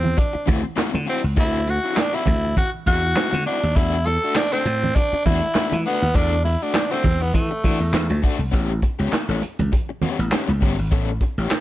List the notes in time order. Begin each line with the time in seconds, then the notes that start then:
Already playing: E2 C4
0.03 muted overdriven electric guitar stroke, low conga
0.17 D4, muted overdriven electric guitar stroke, kick, closed hi-hat, muted conga
0.33 muted overdriven electric guitar stroke, muted slap bass stroke
0.46 D2 C4 E4 F#4, kick, closed hi-hat, muted conga, low conga
0.63 muted overdriven electric guitar stroke
0.76 C4 E4 F#4, snare, clap, closed hi-hat, high conga
0.93 D3, muted overdriven electric guitar stroke, high conga
1.06 C4 E4 F#4, open hi-hat
1.23 C#2, muted overdriven electric guitar stroke
1.37 D2 C4 E4 A4, kick, closed hi-hat
1.67 F#4, muted overdriven electric guitar stroke, closed hi-hat, muted conga
1.84 C4 E4 F#4
1.97 D4, muted overdriven electric guitar stroke, snare, clap, closed hi-hat, high conga
2.13 C4 E4 F#4
2.26 D2, muted overdriven electric guitar stroke, kick, closed hi-hat, muted conga, low conga
2.45 muted overdriven electric guitar stroke
2.56 F#4, muted overdriven electric guitar stroke, kick, closed hi-hat, low conga
2.86 E2 C4 E4 F#4, kick, closed hi-hat, muted conga
3.05 muted overdriven electric guitar stroke
3.15 C4 E4 F#4, snare, clap, closed hi-hat, high conga
3.33 D3, muted overdriven electric guitar stroke, high conga
3.46 C4 D4 E4 F#4, open hi-hat
3.63 D#2, muted overdriven electric guitar stroke
3.76 E2 A3 D4 E4 F#4, kick, closed hi-hat
4.06 A4, muted overdriven electric guitar stroke, closed hi-hat, muted conga
4.24 A3 D4 F#4
4.35 D4, muted overdriven electric guitar stroke, snare, clap, closed hi-hat, high conga
4.53 A3 C4 D4 A4
4.65 A2, muted overdriven electric guitar stroke, closed hi-hat, muted conga
4.83 muted overdriven electric guitar stroke, low conga
4.96 D4, muted overdriven electric guitar stroke, kick, closed hi-hat, muted conga
5.13 muted slap bass stroke, muted overdriven electric guitar stroke
5.25 E2 A3 D4 E4 F#4, kick, closed hi-hat, muted conga, low conga
5.42 muted overdriven electric guitar stroke
5.55 A3 D4 F#4, snare, clap, closed hi-hat, high conga
5.72 E3, muted overdriven electric guitar stroke, high conga
5.85 A3 B3 D4 F#4, open hi-hat
6.02 D#2, muted overdriven electric guitar stroke
6.15 E2 A3 D4 A4, kick, closed hi-hat
6.44 E4, muted overdriven electric guitar stroke, open hi-hat, muted conga
6.62 A3 D4 F#4
6.74 muted overdriven electric guitar stroke, snare, clap, closed hi-hat, high conga
6.91 A3 C4 D4 F#4
7.04 E2, muted overdriven electric guitar stroke, kick, open hi-hat, muted conga, low conga
7.21 B3, muted overdriven electric guitar stroke
7.34 E3 A3, muted overdriven electric guitar stroke, kick, closed hi-hat, muted conga, low conga
7.51 muted overdriven electric guitar stroke
7.64 E3 A3 D4 F#4, kick, open hi-hat, muted conga
7.80 E2, muted overdriven electric guitar stroke
7.93 E2, muted overdriven electric guitar stroke, snare, clap, closed hi-hat, high conga
8.10 D2, muted overdriven electric guitar stroke, high conga
8.23 A3 D4 F#4, kick, open hi-hat
8.39 C2, muted overdriven electric guitar stroke
8.52 A1 B3 C#4 G4, kick, closed hi-hat
8.82 muted overdriven electric guitar stroke, kick, closed hi-hat, muted conga
8.99 C#2 B3 C#4 G4
9.12 muted slap bass stroke, muted overdriven electric guitar stroke, snare, clap, closed hi-hat, high conga
9.28 A1 B3 C#4 A4
9.42 muted overdriven electric guitar stroke, closed hi-hat, muted conga
9.59 C#2, muted overdriven electric guitar stroke, closed hi-hat, low conga
9.72 muted overdriven electric guitar stroke, kick, closed hi-hat, muted conga
9.89 muted overdriven electric guitar stroke
10.02 B3 C#4 G4, muted slap bass stroke, closed hi-hat, muted conga, low conga
10.19 A1, muted overdriven electric guitar stroke, closed hi-hat
10.32 B3 C#4 G4, snare, clap, closed hi-hat, high conga
10.48 C#2, muted overdriven electric guitar stroke, high conga
10.61 G1 B3 C#4 G4, kick, open hi-hat
10.79 G#1, muted overdriven electric guitar stroke
10.91 A1 B3 C#4 A4, kick, closed hi-hat
11.21 muted overdriven electric guitar stroke, kick, closed hi-hat, muted conga
11.38 A1 B3 C#4 G4
11.51 muted overdriven electric guitar stroke, snare, clap, closed hi-hat, high conga